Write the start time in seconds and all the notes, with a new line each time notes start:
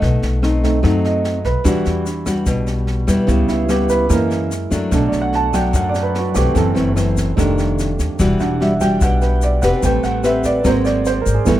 Already playing: A3 D#4 D#5
0.02 B1 B2, kick, snare
0.22 B1, snare
0.42 A3 C4 D#4, cross-stick, snare
0.63 A3 C4 D#4, kick, snare
0.83 F#2 F#3 A3 C4 D#4, kick, cross-stick, snare
1.04 D#5, snare
1.24 snare
1.45 B1 B4, kick, snare
1.64 E2 E3 G3 D4 F#4, kick, cross-stick, snare, shaker
1.86 E2, snare, shaker
2.06 snare, shaker
2.26 G3 D4 F#4, kick, cross-stick, snare, shaker
2.46 B1 B2, kick, snare, shaker
2.67 snare, shaker
2.87 snare
3.07 E2 G3 B3 E4, kick, cross-stick, snare, shaker
3.27 C#2 C#3 G3 B3 E4, kick, snare, shaker
3.48 C#2 E4, snare, shaker
3.69 G3 B3 E4 G4, cross-stick, snare, shaker
3.89 B4, kick, snare, shaker
4.09 F#2 E3 G#3 A#3 C#4 E4 A#4, kick, cross-stick, snare, shaker
4.31 snare, shaker
4.51 snare, shaker
4.70 F#2 F#3 A3 D4, kick, snare, shaker
4.91 B1 B2 F#3 A3 D4 A4, kick, cross-stick, snare, shaker
5.09 B1 D5, snare
5.13 shaker
5.22 F#5
5.33 A5, snare
5.53 F#3 A3 D4 G5, kick, cross-stick, snare, shaker
5.73 F#2 F#5, kick, snare, shaker
5.89 D5
5.94 snare, shaker
6.03 B4
6.15 F#4, snare
6.34 B1 E3 A3 C4 G4, kick, cross-stick, snare, shaker
6.54 F#1 F#2 E3 A3 C4 A4, kick, snare, shaker
6.75 F#1 E3 A3 C4, snare, shaker
6.96 E3 A3 C4, cross-stick, snare, shaker
7.17 kick, snare, shaker
7.36 F1 F2 D#3 G3 A3 D4, kick, cross-stick, snare, shaker
7.58 snare, shaker
7.79 snare, shaker
7.99 D#2, kick, snare, shaker
8.19 E1 E3 G3 D4 F#4, kick, cross-stick, snare, shaker
8.40 E1 G3 D4 F#5, snare, shaker
8.60 G3 D4 F#4 E5, snare
8.81 G3 D4 F#4 G5, kick, cross-stick, snare, shaker
9.01 B1 B2 F#5, kick, snare, shaker
9.21 B4, snare, shaker
9.41 D5, snare, shaker
9.62 E1 C4 G4 B4 F#5, kick, cross-stick, snare, shaker
9.82 A1 G3 A3 C4 G5, kick, snare, shaker
10.03 A1 F#5, snare, shaker
10.24 C4 G4 B4 E5, cross-stick, snare, shaker
10.44 D5, kick, snare, shaker
10.64 G#1 F#3 G#3 A#3 C4 F#4 A#4 C5, kick, cross-stick, snare, shaker
10.85 D5, snare, shaker
11.05 C5, snare, shaker
11.22 A#4
11.26 G#1, kick, snare, shaker
11.34 G#4
11.45 G1 E3 G3 A3 B3 E4 F#4 A4, kick, cross-stick, snare, shaker